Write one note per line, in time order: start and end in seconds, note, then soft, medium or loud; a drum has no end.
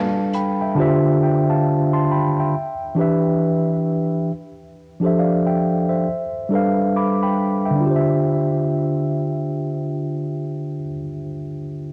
0.00 0.70 G3 medium
0.00 0.71 D4 medium
0.00 0.71 A4 medium
0.00 0.72 B4 medium
0.00 0.78 F5 medium
0.00 0.31 A5 medium
0.33 0.60 G5 medium
0.33 0.60 B5 medium
0.33 closed hi-hat medium
0.61 0.80 E5 medium
0.61 1.03 G5 medium
0.75 2.02 D3 loud
0.75 2.03 D4 medium
0.75 2.03 F4 medium
0.75 2.04 G4 medium
0.80 2.05 C5 medium
0.80 1.22 E5 loud
1.23 1.49 E5 soft
1.23 1.48 G5 medium
1.50 1.91 F5 medium
1.50 1.91 A5 medium
1.93 2.09 A5 medium
1.93 2.09 C6 medium
2.11 2.37 G5 medium
2.11 2.37 B5 medium
2.39 2.80 E5 soft
2.39 2.80 G5 medium
2.95 4.28 E3 medium
2.95 4.29 D4 medium
2.95 4.30 G4 medium
2.99 4.31 B4 medium
2.99 4.32 E5 medium
5.00 6.05 F3 medium
5.00 6.06 D4 medium
5.00 6.07 G4 medium
5.00 6.07 A4 medium
5.05 5.20 C5 medium
5.05 5.20 E5 medium
5.19 5.45 D5 soft
5.19 5.45 F5 medium
5.47 5.88 E5 medium
5.47 5.88 G5 medium
5.89 6.32 C5 soft
5.89 6.31 E5 medium
6.49 7.76 G3 medium
6.49 7.74 D4 medium
6.49 7.78 A4 medium
6.54 7.78 B4 medium
6.54 6.97 F5 medium
6.96 7.22 B5 soft
6.96 7.22 D6 medium
7.23 7.64 G5 medium
7.23 7.64 B5 medium
7.65 7.95 E5 soft
7.65 8.08 G5 medium
7.71 10.77 D3 medium
7.75 10.82 D4 medium
7.81 10.87 F4 medium
7.86 10.92 G4 medium
7.91 10.97 C5 medium
7.96 11.03 E5 medium